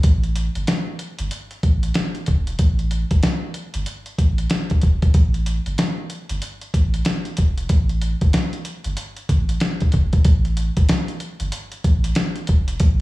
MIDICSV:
0, 0, Header, 1, 3, 480
1, 0, Start_track
1, 0, Tempo, 638298
1, 29, Time_signature, 4, 2, 24, 8
1, 9785, End_track
2, 0, Start_track
2, 0, Title_t, "Sub bass"
2, 0, Program_c, 0, 38
2, 30, Note_on_c, 0, 33, 104
2, 368, Note_off_c, 0, 33, 0
2, 421, Note_on_c, 0, 31, 88
2, 500, Note_off_c, 0, 31, 0
2, 900, Note_on_c, 0, 31, 84
2, 980, Note_off_c, 0, 31, 0
2, 1230, Note_on_c, 0, 33, 99
2, 1440, Note_off_c, 0, 33, 0
2, 1715, Note_on_c, 0, 28, 97
2, 1923, Note_off_c, 0, 28, 0
2, 1950, Note_on_c, 0, 33, 111
2, 2288, Note_off_c, 0, 33, 0
2, 2341, Note_on_c, 0, 31, 83
2, 2420, Note_off_c, 0, 31, 0
2, 2819, Note_on_c, 0, 31, 97
2, 2900, Note_off_c, 0, 31, 0
2, 3149, Note_on_c, 0, 33, 96
2, 3359, Note_off_c, 0, 33, 0
2, 3635, Note_on_c, 0, 28, 93
2, 3843, Note_off_c, 0, 28, 0
2, 3870, Note_on_c, 0, 33, 107
2, 4208, Note_off_c, 0, 33, 0
2, 4259, Note_on_c, 0, 31, 85
2, 4340, Note_off_c, 0, 31, 0
2, 4739, Note_on_c, 0, 31, 81
2, 4819, Note_off_c, 0, 31, 0
2, 5069, Note_on_c, 0, 33, 99
2, 5279, Note_off_c, 0, 33, 0
2, 5555, Note_on_c, 0, 28, 96
2, 5763, Note_off_c, 0, 28, 0
2, 5789, Note_on_c, 0, 33, 114
2, 6127, Note_off_c, 0, 33, 0
2, 6180, Note_on_c, 0, 31, 86
2, 6260, Note_off_c, 0, 31, 0
2, 6659, Note_on_c, 0, 31, 97
2, 6739, Note_off_c, 0, 31, 0
2, 6989, Note_on_c, 0, 33, 95
2, 7199, Note_off_c, 0, 33, 0
2, 7474, Note_on_c, 0, 28, 92
2, 7682, Note_off_c, 0, 28, 0
2, 7709, Note_on_c, 0, 33, 111
2, 8047, Note_off_c, 0, 33, 0
2, 8100, Note_on_c, 0, 31, 93
2, 8180, Note_off_c, 0, 31, 0
2, 8577, Note_on_c, 0, 31, 86
2, 8658, Note_off_c, 0, 31, 0
2, 8909, Note_on_c, 0, 33, 103
2, 9119, Note_off_c, 0, 33, 0
2, 9394, Note_on_c, 0, 28, 99
2, 9602, Note_off_c, 0, 28, 0
2, 9629, Note_on_c, 0, 33, 117
2, 9785, Note_off_c, 0, 33, 0
2, 9785, End_track
3, 0, Start_track
3, 0, Title_t, "Drums"
3, 25, Note_on_c, 9, 42, 92
3, 29, Note_on_c, 9, 36, 105
3, 101, Note_off_c, 9, 42, 0
3, 104, Note_off_c, 9, 36, 0
3, 177, Note_on_c, 9, 42, 34
3, 252, Note_off_c, 9, 42, 0
3, 267, Note_on_c, 9, 42, 67
3, 343, Note_off_c, 9, 42, 0
3, 416, Note_on_c, 9, 42, 46
3, 492, Note_off_c, 9, 42, 0
3, 507, Note_on_c, 9, 42, 92
3, 512, Note_on_c, 9, 38, 106
3, 512, Note_on_c, 9, 40, 84
3, 582, Note_off_c, 9, 42, 0
3, 587, Note_off_c, 9, 38, 0
3, 587, Note_off_c, 9, 40, 0
3, 745, Note_on_c, 9, 42, 65
3, 820, Note_off_c, 9, 42, 0
3, 891, Note_on_c, 9, 42, 56
3, 967, Note_off_c, 9, 42, 0
3, 985, Note_on_c, 9, 42, 92
3, 1060, Note_off_c, 9, 42, 0
3, 1134, Note_on_c, 9, 42, 35
3, 1209, Note_off_c, 9, 42, 0
3, 1227, Note_on_c, 9, 42, 65
3, 1228, Note_on_c, 9, 36, 87
3, 1302, Note_off_c, 9, 42, 0
3, 1303, Note_off_c, 9, 36, 0
3, 1376, Note_on_c, 9, 42, 54
3, 1451, Note_off_c, 9, 42, 0
3, 1462, Note_on_c, 9, 42, 82
3, 1469, Note_on_c, 9, 40, 86
3, 1470, Note_on_c, 9, 38, 112
3, 1537, Note_off_c, 9, 42, 0
3, 1545, Note_off_c, 9, 38, 0
3, 1545, Note_off_c, 9, 40, 0
3, 1615, Note_on_c, 9, 42, 35
3, 1690, Note_off_c, 9, 42, 0
3, 1702, Note_on_c, 9, 42, 69
3, 1714, Note_on_c, 9, 36, 84
3, 1777, Note_off_c, 9, 42, 0
3, 1789, Note_off_c, 9, 36, 0
3, 1858, Note_on_c, 9, 42, 54
3, 1933, Note_off_c, 9, 42, 0
3, 1946, Note_on_c, 9, 42, 93
3, 1949, Note_on_c, 9, 36, 105
3, 2021, Note_off_c, 9, 42, 0
3, 2024, Note_off_c, 9, 36, 0
3, 2098, Note_on_c, 9, 42, 33
3, 2173, Note_off_c, 9, 42, 0
3, 2187, Note_on_c, 9, 42, 69
3, 2262, Note_off_c, 9, 42, 0
3, 2337, Note_on_c, 9, 42, 46
3, 2339, Note_on_c, 9, 36, 90
3, 2412, Note_off_c, 9, 42, 0
3, 2414, Note_off_c, 9, 36, 0
3, 2426, Note_on_c, 9, 42, 91
3, 2432, Note_on_c, 9, 38, 106
3, 2432, Note_on_c, 9, 40, 84
3, 2502, Note_off_c, 9, 42, 0
3, 2507, Note_off_c, 9, 38, 0
3, 2507, Note_off_c, 9, 40, 0
3, 2663, Note_on_c, 9, 42, 61
3, 2738, Note_off_c, 9, 42, 0
3, 2811, Note_on_c, 9, 42, 55
3, 2886, Note_off_c, 9, 42, 0
3, 2904, Note_on_c, 9, 42, 91
3, 2979, Note_off_c, 9, 42, 0
3, 3052, Note_on_c, 9, 42, 36
3, 3127, Note_off_c, 9, 42, 0
3, 3147, Note_on_c, 9, 36, 87
3, 3147, Note_on_c, 9, 42, 61
3, 3222, Note_off_c, 9, 36, 0
3, 3223, Note_off_c, 9, 42, 0
3, 3295, Note_on_c, 9, 42, 55
3, 3370, Note_off_c, 9, 42, 0
3, 3381, Note_on_c, 9, 42, 84
3, 3389, Note_on_c, 9, 38, 111
3, 3389, Note_on_c, 9, 40, 91
3, 3457, Note_off_c, 9, 42, 0
3, 3464, Note_off_c, 9, 38, 0
3, 3464, Note_off_c, 9, 40, 0
3, 3533, Note_on_c, 9, 42, 35
3, 3543, Note_on_c, 9, 36, 87
3, 3608, Note_off_c, 9, 42, 0
3, 3618, Note_off_c, 9, 36, 0
3, 3621, Note_on_c, 9, 42, 70
3, 3633, Note_on_c, 9, 36, 86
3, 3696, Note_off_c, 9, 42, 0
3, 3708, Note_off_c, 9, 36, 0
3, 3777, Note_on_c, 9, 42, 54
3, 3779, Note_on_c, 9, 36, 102
3, 3852, Note_off_c, 9, 42, 0
3, 3854, Note_off_c, 9, 36, 0
3, 3866, Note_on_c, 9, 42, 89
3, 3868, Note_on_c, 9, 36, 107
3, 3941, Note_off_c, 9, 42, 0
3, 3943, Note_off_c, 9, 36, 0
3, 4017, Note_on_c, 9, 42, 35
3, 4092, Note_off_c, 9, 42, 0
3, 4108, Note_on_c, 9, 42, 70
3, 4183, Note_off_c, 9, 42, 0
3, 4257, Note_on_c, 9, 42, 48
3, 4332, Note_off_c, 9, 42, 0
3, 4347, Note_on_c, 9, 42, 92
3, 4352, Note_on_c, 9, 40, 86
3, 4353, Note_on_c, 9, 38, 103
3, 4422, Note_off_c, 9, 42, 0
3, 4428, Note_off_c, 9, 38, 0
3, 4428, Note_off_c, 9, 40, 0
3, 4585, Note_on_c, 9, 42, 64
3, 4661, Note_off_c, 9, 42, 0
3, 4733, Note_on_c, 9, 42, 56
3, 4809, Note_off_c, 9, 42, 0
3, 4826, Note_on_c, 9, 42, 95
3, 4901, Note_off_c, 9, 42, 0
3, 4974, Note_on_c, 9, 42, 36
3, 5049, Note_off_c, 9, 42, 0
3, 5068, Note_on_c, 9, 36, 85
3, 5069, Note_on_c, 9, 42, 64
3, 5143, Note_off_c, 9, 36, 0
3, 5144, Note_off_c, 9, 42, 0
3, 5217, Note_on_c, 9, 42, 54
3, 5293, Note_off_c, 9, 42, 0
3, 5301, Note_on_c, 9, 42, 85
3, 5309, Note_on_c, 9, 38, 107
3, 5309, Note_on_c, 9, 40, 88
3, 5376, Note_off_c, 9, 42, 0
3, 5384, Note_off_c, 9, 38, 0
3, 5384, Note_off_c, 9, 40, 0
3, 5454, Note_on_c, 9, 42, 35
3, 5529, Note_off_c, 9, 42, 0
3, 5541, Note_on_c, 9, 42, 71
3, 5553, Note_on_c, 9, 36, 86
3, 5616, Note_off_c, 9, 42, 0
3, 5628, Note_off_c, 9, 36, 0
3, 5697, Note_on_c, 9, 42, 53
3, 5772, Note_off_c, 9, 42, 0
3, 5785, Note_on_c, 9, 42, 92
3, 5788, Note_on_c, 9, 36, 105
3, 5860, Note_off_c, 9, 42, 0
3, 5863, Note_off_c, 9, 36, 0
3, 5936, Note_on_c, 9, 42, 35
3, 6011, Note_off_c, 9, 42, 0
3, 6027, Note_on_c, 9, 42, 71
3, 6103, Note_off_c, 9, 42, 0
3, 6176, Note_on_c, 9, 42, 45
3, 6179, Note_on_c, 9, 36, 88
3, 6251, Note_off_c, 9, 42, 0
3, 6254, Note_off_c, 9, 36, 0
3, 6266, Note_on_c, 9, 42, 92
3, 6271, Note_on_c, 9, 40, 82
3, 6272, Note_on_c, 9, 38, 105
3, 6341, Note_off_c, 9, 42, 0
3, 6347, Note_off_c, 9, 38, 0
3, 6347, Note_off_c, 9, 40, 0
3, 6414, Note_on_c, 9, 42, 36
3, 6489, Note_off_c, 9, 42, 0
3, 6504, Note_on_c, 9, 42, 62
3, 6579, Note_off_c, 9, 42, 0
3, 6651, Note_on_c, 9, 42, 55
3, 6726, Note_off_c, 9, 42, 0
3, 6744, Note_on_c, 9, 42, 96
3, 6819, Note_off_c, 9, 42, 0
3, 6892, Note_on_c, 9, 42, 35
3, 6967, Note_off_c, 9, 42, 0
3, 6987, Note_on_c, 9, 36, 84
3, 6987, Note_on_c, 9, 42, 65
3, 7062, Note_off_c, 9, 36, 0
3, 7063, Note_off_c, 9, 42, 0
3, 7136, Note_on_c, 9, 42, 53
3, 7212, Note_off_c, 9, 42, 0
3, 7222, Note_on_c, 9, 42, 82
3, 7229, Note_on_c, 9, 40, 88
3, 7230, Note_on_c, 9, 38, 109
3, 7297, Note_off_c, 9, 42, 0
3, 7305, Note_off_c, 9, 38, 0
3, 7305, Note_off_c, 9, 40, 0
3, 7373, Note_on_c, 9, 42, 36
3, 7383, Note_on_c, 9, 36, 85
3, 7448, Note_off_c, 9, 42, 0
3, 7458, Note_off_c, 9, 36, 0
3, 7460, Note_on_c, 9, 42, 72
3, 7473, Note_on_c, 9, 36, 84
3, 7535, Note_off_c, 9, 42, 0
3, 7548, Note_off_c, 9, 36, 0
3, 7616, Note_on_c, 9, 42, 53
3, 7619, Note_on_c, 9, 36, 102
3, 7691, Note_off_c, 9, 42, 0
3, 7694, Note_off_c, 9, 36, 0
3, 7705, Note_on_c, 9, 42, 96
3, 7708, Note_on_c, 9, 36, 112
3, 7780, Note_off_c, 9, 42, 0
3, 7783, Note_off_c, 9, 36, 0
3, 7858, Note_on_c, 9, 42, 36
3, 7933, Note_off_c, 9, 42, 0
3, 7948, Note_on_c, 9, 42, 74
3, 8023, Note_off_c, 9, 42, 0
3, 8096, Note_on_c, 9, 42, 49
3, 8099, Note_on_c, 9, 36, 93
3, 8172, Note_off_c, 9, 42, 0
3, 8174, Note_off_c, 9, 36, 0
3, 8186, Note_on_c, 9, 42, 97
3, 8192, Note_on_c, 9, 38, 112
3, 8192, Note_on_c, 9, 40, 89
3, 8262, Note_off_c, 9, 42, 0
3, 8267, Note_off_c, 9, 38, 0
3, 8267, Note_off_c, 9, 40, 0
3, 8334, Note_on_c, 9, 42, 38
3, 8410, Note_off_c, 9, 42, 0
3, 8423, Note_on_c, 9, 42, 64
3, 8499, Note_off_c, 9, 42, 0
3, 8571, Note_on_c, 9, 42, 59
3, 8647, Note_off_c, 9, 42, 0
3, 8663, Note_on_c, 9, 42, 102
3, 8738, Note_off_c, 9, 42, 0
3, 8811, Note_on_c, 9, 42, 37
3, 8886, Note_off_c, 9, 42, 0
3, 8906, Note_on_c, 9, 42, 65
3, 8907, Note_on_c, 9, 36, 91
3, 8982, Note_off_c, 9, 36, 0
3, 8982, Note_off_c, 9, 42, 0
3, 9055, Note_on_c, 9, 42, 55
3, 9130, Note_off_c, 9, 42, 0
3, 9138, Note_on_c, 9, 42, 86
3, 9146, Note_on_c, 9, 38, 112
3, 9146, Note_on_c, 9, 40, 91
3, 9213, Note_off_c, 9, 42, 0
3, 9221, Note_off_c, 9, 38, 0
3, 9221, Note_off_c, 9, 40, 0
3, 9291, Note_on_c, 9, 42, 37
3, 9367, Note_off_c, 9, 42, 0
3, 9379, Note_on_c, 9, 42, 74
3, 9392, Note_on_c, 9, 36, 93
3, 9454, Note_off_c, 9, 42, 0
3, 9467, Note_off_c, 9, 36, 0
3, 9534, Note_on_c, 9, 42, 56
3, 9609, Note_off_c, 9, 42, 0
3, 9623, Note_on_c, 9, 42, 96
3, 9627, Note_on_c, 9, 36, 111
3, 9698, Note_off_c, 9, 42, 0
3, 9702, Note_off_c, 9, 36, 0
3, 9785, End_track
0, 0, End_of_file